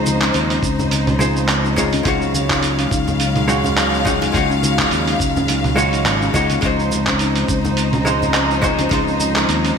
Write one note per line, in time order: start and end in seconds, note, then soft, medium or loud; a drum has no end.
0.00 0.29 C#2 medium
0.00 9.78 C#3 medium
0.00 2.02 F3 medium
0.00 1.16 G#3 medium
0.00 1.17 D#4 medium
0.00 2.02 D#4 medium
0.00 1.18 F4 medium
0.00 1.19 C5 loud
0.00 2.02 C5 medium
0.06 0.20 C4 medium
0.06 high conga medium
0.06 shaker medium
0.21 0.29 C#4 medium
0.21 clap medium
0.21 muted conga medium
0.21 shaker soft
0.34 0.57 D#2 loud
0.34 0.48 D#4 loud
0.34 open hi-hat medium
0.34 shaker soft
0.50 0.57 C4 medium
0.50 open hi-hat soft
0.50 shaker soft
0.62 2.01 C#2 medium
0.62 0.71 C#4 medium
0.62 kick loud
0.62 shaker medium
0.79 0.90 D#4 loud
0.79 low conga medium
0.79 shaker soft
0.91 1.06 C4 medium
0.91 open hi-hat medium
0.91 muted conga medium
0.91 shaker soft
1.07 1.14 C#4 loud
1.07 open hi-hat soft
1.07 low conga medium
1.07 shaker soft
1.19 1.74 G#3 medium
1.19 1.74 D#4 medium
1.19 1.34 D#4 medium
1.19 1.75 F4 medium
1.19 1.75 C5 medium
1.19 muted conga medium
1.19 shaker medium
1.36 1.43 C4 medium
1.36 shaker soft
1.48 1.57 C#4 medium
1.48 clap medium
1.48 open hi-hat medium
1.48 shaker soft
1.65 1.76 D#4 loud
1.65 shaker soft
1.76 2.02 G#3 loud
1.76 1.91 C4 medium
1.76 2.03 C#4 medium
1.76 2.03 D#4 medium
1.76 2.03 F4 loud
1.76 2.03 C5 medium
1.76 kick medium
1.76 muted conga medium
1.76 shaker medium
1.93 2.00 C#4 loud
1.93 open hi-hat soft
1.93 high conga medium
1.93 shaker soft
2.03 2.86 C#2 loud
2.03 6.59 F#3 medium
2.03 3.44 G#3 medium
2.03 6.59 G#3 medium
2.03 3.45 D#4 medium
2.03 2.20 D#4 loud
2.03 3.46 F4 medium
2.03 3.46 F#4 medium
2.03 6.59 F5 loud
2.03 kick loud
2.03 open hi-hat medium
2.03 shaker soft
2.08 3.47 C#5 loud
2.22 2.29 A#3 medium
2.22 shaker soft
2.34 2.43 C#4 medium
2.34 high conga medium
2.34 shaker medium
2.50 2.62 D#4 loud
2.50 kick medium
2.50 clap medium
2.50 shaker soft
2.63 2.77 A#3 medium
2.63 open hi-hat medium
2.63 shaker soft
2.79 2.86 C#4 loud
2.79 open hi-hat soft
2.79 shaker soft
2.91 4.29 C#2 medium
2.91 3.06 D#4 loud
2.91 kick loud
2.91 shaker medium
3.08 3.14 A#3 medium
3.08 low conga medium
3.08 shaker soft
3.20 3.29 C#4 medium
3.20 open hi-hat medium
3.20 shaker soft
3.36 3.47 D#4 loud
3.36 open hi-hat soft
3.36 low conga medium
3.36 shaker soft
3.48 4.02 G#3 medium
3.48 3.63 A#3 medium
3.48 4.03 D#4 medium
3.48 4.03 F4 medium
3.48 4.03 F#4 medium
3.48 4.04 C#5 medium
3.48 shaker medium
3.64 3.71 C#4 loud
3.64 low conga medium
3.64 shaker soft
3.76 3.91 D#4 loud
3.76 clap medium
3.76 open hi-hat medium
3.76 shaker soft
3.92 4.00 A#3 medium
3.92 shaker soft
4.05 4.31 G#3 loud
4.05 4.14 C#4 medium
4.05 4.31 D#4 medium
4.05 4.32 F4 medium
4.05 4.32 F#4 medium
4.05 4.32 C#5 medium
4.05 kick loud
4.05 muted conga medium
4.05 shaker medium
4.22 4.33 D#4 loud
4.22 open hi-hat soft
4.22 muted conga medium
4.22 high conga medium
4.22 shaker soft
4.32 4.86 C#2 loud
4.32 5.73 G#3 medium
4.32 4.49 A#3 medium
4.32 5.74 D#4 medium
4.32 5.74 F4 medium
4.32 5.75 F#4 medium
4.32 kick loud
4.32 open hi-hat medium
4.32 shaker soft
4.37 5.76 C#5 loud
4.50 4.57 C#4 medium
4.50 shaker soft
4.63 4.77 D#4 loud
4.63 high conga medium
4.63 shaker medium
4.79 4.86 A#3 medium
4.79 kick medium
4.79 clap medium
4.79 muted conga medium
4.79 shaker soft
4.91 5.14 D#2 loud
4.91 5.00 C#4 medium
4.91 open hi-hat medium
4.91 shaker soft
5.07 5.19 D#4 loud
5.07 open hi-hat soft
5.07 shaker soft
5.20 6.05 C#2 medium
5.20 5.34 A#3 medium
5.20 kick loud
5.20 shaker medium
5.36 5.43 C#4 loud
5.36 low conga medium
5.36 shaker soft
5.48 5.63 D#4 loud
5.48 open hi-hat medium
5.48 muted conga medium
5.48 shaker soft
5.64 5.72 A#3 medium
5.64 open hi-hat soft
5.64 low conga medium
5.64 shaker soft
5.76 6.31 G#3 medium
5.76 6.31 D#4 medium
5.76 6.31 F4 medium
5.76 6.32 F#4 medium
5.76 6.32 C#5 medium
5.76 muted conga medium
5.76 shaker medium
5.93 6.05 D#4 loud
5.93 open hi-hat soft
5.93 shaker soft
6.05 6.28 G#1 medium
6.05 6.20 A#3 medium
6.05 clap medium
6.05 open hi-hat medium
6.05 shaker soft
6.22 6.29 C#4 medium
6.22 shaker soft
6.34 6.57 C#2 loud
6.34 6.60 G#3 loud
6.34 6.49 D#4 medium
6.34 6.60 D#4 medium
6.34 6.60 F4 medium
6.34 6.60 F#4 medium
6.34 6.61 C#5 loud
6.34 kick medium
6.34 muted conga medium
6.34 shaker medium
6.50 6.57 A#3 medium
6.50 open hi-hat soft
6.50 high conga medium
6.50 shaker soft
6.61 7.44 C#2 loud
6.61 9.78 F3 medium
6.61 8.02 G#3 medium
6.61 6.72 C#4 medium
6.61 8.03 D#4 medium
6.61 9.78 D#4 medium
6.61 8.04 F4 medium
6.61 9.78 C5 medium
6.61 kick loud
6.61 open hi-hat medium
6.61 shaker soft
6.66 8.04 C5 loud
6.79 6.91 D#4 medium
6.79 shaker soft
6.91 high conga medium
6.91 shaker medium
7.07 7.15 C#4 loud
7.07 kick medium
7.07 clap medium
7.07 shaker soft
7.19 7.35 D#4 loud
7.19 open hi-hat medium
7.19 shaker soft
7.36 7.43 C4 medium
7.36 open hi-hat soft
7.36 shaker soft
7.49 8.87 C#2 medium
7.49 7.58 C#4 medium
7.49 kick loud
7.49 shaker medium
7.65 7.76 D#4 medium
7.65 low conga medium
7.65 shaker soft
7.77 7.92 C4 medium
7.77 open hi-hat medium
7.77 shaker soft
7.93 8.00 C#4 loud
7.93 open hi-hat soft
7.93 low conga medium
7.93 shaker soft
8.05 8.59 G#3 medium
8.05 8.20 D#4 medium
8.05 8.60 D#4 medium
8.05 8.60 F4 medium
8.05 8.61 C5 medium
8.05 shaker medium
8.22 8.29 C4 medium
8.22 low conga medium
8.22 shaker soft
8.34 8.43 C#4 medium
8.34 clap medium
8.34 open hi-hat medium
8.34 shaker soft
8.50 8.62 D#4 medium
8.50 shaker soft
8.62 8.88 G#3 loud
8.62 8.77 C4 medium
8.62 8.88 C#4 medium
8.62 8.88 D#4 medium
8.62 8.89 F4 medium
8.62 8.89 C5 loud
8.62 kick loud
8.62 muted conga medium
8.62 shaker medium
8.79 8.86 C#4 loud
8.79 open hi-hat soft
8.79 muted conga medium
8.79 high conga medium
8.79 shaker soft
8.89 9.44 C#2 loud
8.89 9.78 G#3 loud
8.89 9.06 D#4 loud
8.89 9.78 D#4 medium
8.89 9.78 F4 medium
8.89 kick loud
8.89 open hi-hat medium
8.89 shaker soft
8.94 9.78 C5 loud
9.08 9.14 C4 medium
9.08 shaker soft
9.20 9.29 C#4 medium
9.20 high conga medium
9.20 shaker medium
9.36 9.47 D#4 medium
9.36 clap medium
9.36 muted conga medium
9.36 shaker soft
9.49 9.71 D#2 loud
9.49 9.63 C4 medium
9.49 open hi-hat medium
9.49 shaker soft
9.65 9.71 C#4 loud
9.65 open hi-hat soft
9.65 shaker soft